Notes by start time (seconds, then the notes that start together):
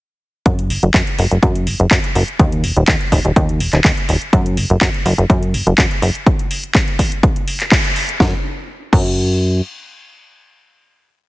0.46 F#2, kick, closed hi-hat
0.59 closed hi-hat
0.70 F#1, open hi-hat
0.83 F#1, closed hi-hat
0.94 F#2, kick, clap, closed hi-hat
1.07 closed hi-hat
1.19 F#1, open hi-hat
1.31 F#1, closed hi-hat
1.43 F#2, kick, closed hi-hat
1.55 closed hi-hat
1.67 F#1, open hi-hat
1.80 F#1, closed hi-hat
1.91 F#2, kick, clap, closed hi-hat
2.04 closed hi-hat
2.15 F#1, open hi-hat
2.28 closed hi-hat
2.39 D#2, kick, closed hi-hat
2.52 closed hi-hat
2.64 D#1, open hi-hat
2.76 D#1, closed hi-hat
2.88 D#2, kick, clap, closed hi-hat
3.01 closed hi-hat
3.12 D#1, kick, open hi-hat
3.25 D#1, closed hi-hat
3.36 D#2, kick, closed hi-hat
3.49 closed hi-hat
3.60 D#1, open hi-hat
3.73 D#1, clap, closed hi-hat
3.84 D#2, kick, clap, open hi-hat
3.97 closed hi-hat
4.09 D#1, open hi-hat
4.22 closed hi-hat
4.33 F#2, kick, closed hi-hat
4.46 closed hi-hat
4.57 F#1, open hi-hat
4.70 F#1, closed hi-hat
4.81 F#2, kick, clap, closed hi-hat
4.94 closed hi-hat
5.06 F#1, open hi-hat
5.18 F#1, closed hi-hat
5.30 F#2, kick, closed hi-hat
5.43 closed hi-hat
5.54 F#1, open hi-hat
5.67 F#1, closed hi-hat
5.78 F#2, kick, clap, closed hi-hat
5.91 closed hi-hat
6.02 F#1, open hi-hat
6.15 closed hi-hat
6.26 kick, closed hi-hat
6.39 closed hi-hat
6.51 open hi-hat
6.63 closed hi-hat
6.75 kick, clap, closed hi-hat
6.88 closed hi-hat
6.99 kick, open hi-hat
7.12 closed hi-hat
7.23 kick, closed hi-hat
7.36 closed hi-hat
7.48 open hi-hat
7.60 clap, closed hi-hat
7.72 kick, clap, open hi-hat
7.85 closed hi-hat
7.96 open hi-hat
8.09 closed hi-hat
8.20 F#2, kick, snare
8.93 F#2, kick, crash